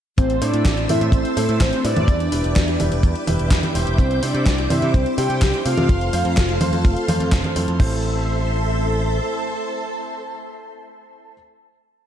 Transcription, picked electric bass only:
0, 0, Header, 1, 2, 480
1, 0, Start_track
1, 0, Key_signature, 0, "minor"
1, 0, Tempo, 476190
1, 180, Time_signature, 4, 2, 24, 8
1, 12165, End_track
2, 0, Start_track
2, 0, Title_t, "Picked electric bass"
2, 0, Program_c, 0, 34
2, 181, Note_on_c, 0, 33, 102
2, 383, Note_off_c, 0, 33, 0
2, 420, Note_on_c, 0, 45, 82
2, 521, Note_off_c, 0, 45, 0
2, 540, Note_on_c, 0, 45, 94
2, 641, Note_off_c, 0, 45, 0
2, 658, Note_on_c, 0, 33, 90
2, 861, Note_off_c, 0, 33, 0
2, 900, Note_on_c, 0, 45, 96
2, 1001, Note_off_c, 0, 45, 0
2, 1020, Note_on_c, 0, 45, 100
2, 1121, Note_off_c, 0, 45, 0
2, 1130, Note_on_c, 0, 33, 94
2, 1236, Note_off_c, 0, 33, 0
2, 1379, Note_on_c, 0, 45, 102
2, 1481, Note_off_c, 0, 45, 0
2, 1500, Note_on_c, 0, 45, 87
2, 1601, Note_off_c, 0, 45, 0
2, 1620, Note_on_c, 0, 33, 83
2, 1721, Note_off_c, 0, 33, 0
2, 1861, Note_on_c, 0, 45, 92
2, 1962, Note_off_c, 0, 45, 0
2, 1981, Note_on_c, 0, 45, 89
2, 2082, Note_off_c, 0, 45, 0
2, 2097, Note_on_c, 0, 40, 105
2, 2300, Note_off_c, 0, 40, 0
2, 2341, Note_on_c, 0, 28, 82
2, 2442, Note_off_c, 0, 28, 0
2, 2460, Note_on_c, 0, 28, 96
2, 2561, Note_off_c, 0, 28, 0
2, 2583, Note_on_c, 0, 40, 95
2, 2784, Note_off_c, 0, 40, 0
2, 2822, Note_on_c, 0, 28, 99
2, 2922, Note_off_c, 0, 28, 0
2, 2942, Note_on_c, 0, 28, 103
2, 3042, Note_off_c, 0, 28, 0
2, 3057, Note_on_c, 0, 40, 95
2, 3160, Note_off_c, 0, 40, 0
2, 3301, Note_on_c, 0, 28, 102
2, 3402, Note_off_c, 0, 28, 0
2, 3421, Note_on_c, 0, 28, 86
2, 3522, Note_off_c, 0, 28, 0
2, 3536, Note_on_c, 0, 40, 84
2, 3639, Note_off_c, 0, 40, 0
2, 3781, Note_on_c, 0, 28, 92
2, 3882, Note_off_c, 0, 28, 0
2, 3900, Note_on_c, 0, 28, 94
2, 4001, Note_off_c, 0, 28, 0
2, 4017, Note_on_c, 0, 36, 103
2, 4220, Note_off_c, 0, 36, 0
2, 4261, Note_on_c, 0, 48, 83
2, 4361, Note_off_c, 0, 48, 0
2, 4381, Note_on_c, 0, 48, 96
2, 4481, Note_off_c, 0, 48, 0
2, 4499, Note_on_c, 0, 36, 92
2, 4701, Note_off_c, 0, 36, 0
2, 4741, Note_on_c, 0, 48, 98
2, 4841, Note_off_c, 0, 48, 0
2, 4860, Note_on_c, 0, 48, 102
2, 4961, Note_off_c, 0, 48, 0
2, 4981, Note_on_c, 0, 36, 97
2, 5082, Note_off_c, 0, 36, 0
2, 5220, Note_on_c, 0, 48, 102
2, 5321, Note_off_c, 0, 48, 0
2, 5340, Note_on_c, 0, 48, 85
2, 5441, Note_off_c, 0, 48, 0
2, 5462, Note_on_c, 0, 36, 82
2, 5562, Note_off_c, 0, 36, 0
2, 5701, Note_on_c, 0, 48, 89
2, 5802, Note_off_c, 0, 48, 0
2, 5820, Note_on_c, 0, 48, 94
2, 5921, Note_off_c, 0, 48, 0
2, 5939, Note_on_c, 0, 29, 103
2, 6142, Note_off_c, 0, 29, 0
2, 6181, Note_on_c, 0, 41, 81
2, 6282, Note_off_c, 0, 41, 0
2, 6301, Note_on_c, 0, 41, 94
2, 6402, Note_off_c, 0, 41, 0
2, 6428, Note_on_c, 0, 29, 91
2, 6626, Note_off_c, 0, 29, 0
2, 6660, Note_on_c, 0, 41, 94
2, 6761, Note_off_c, 0, 41, 0
2, 6780, Note_on_c, 0, 41, 102
2, 6881, Note_off_c, 0, 41, 0
2, 6902, Note_on_c, 0, 29, 93
2, 7002, Note_off_c, 0, 29, 0
2, 7141, Note_on_c, 0, 41, 102
2, 7242, Note_off_c, 0, 41, 0
2, 7261, Note_on_c, 0, 41, 84
2, 7362, Note_off_c, 0, 41, 0
2, 7378, Note_on_c, 0, 29, 81
2, 7480, Note_off_c, 0, 29, 0
2, 7622, Note_on_c, 0, 41, 92
2, 7722, Note_off_c, 0, 41, 0
2, 7741, Note_on_c, 0, 41, 92
2, 7841, Note_off_c, 0, 41, 0
2, 7860, Note_on_c, 0, 33, 100
2, 9260, Note_off_c, 0, 33, 0
2, 12165, End_track
0, 0, End_of_file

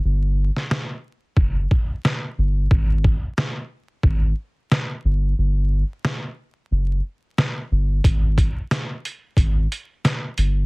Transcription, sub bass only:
0, 0, Header, 1, 2, 480
1, 0, Start_track
1, 0, Tempo, 666667
1, 32, Time_signature, 4, 2, 24, 8
1, 7674, End_track
2, 0, Start_track
2, 0, Title_t, "Sub bass"
2, 0, Program_c, 0, 38
2, 32, Note_on_c, 0, 31, 113
2, 361, Note_off_c, 0, 31, 0
2, 984, Note_on_c, 0, 30, 103
2, 1200, Note_off_c, 0, 30, 0
2, 1713, Note_on_c, 0, 31, 85
2, 1925, Note_off_c, 0, 31, 0
2, 1951, Note_on_c, 0, 32, 113
2, 2280, Note_off_c, 0, 32, 0
2, 2904, Note_on_c, 0, 32, 101
2, 3120, Note_off_c, 0, 32, 0
2, 3633, Note_on_c, 0, 31, 101
2, 3845, Note_off_c, 0, 31, 0
2, 3873, Note_on_c, 0, 31, 110
2, 4201, Note_off_c, 0, 31, 0
2, 4833, Note_on_c, 0, 30, 101
2, 5045, Note_off_c, 0, 30, 0
2, 5553, Note_on_c, 0, 31, 88
2, 5765, Note_off_c, 0, 31, 0
2, 5791, Note_on_c, 0, 32, 110
2, 6120, Note_off_c, 0, 32, 0
2, 6744, Note_on_c, 0, 32, 101
2, 6960, Note_off_c, 0, 32, 0
2, 7472, Note_on_c, 0, 31, 98
2, 7674, Note_off_c, 0, 31, 0
2, 7674, End_track
0, 0, End_of_file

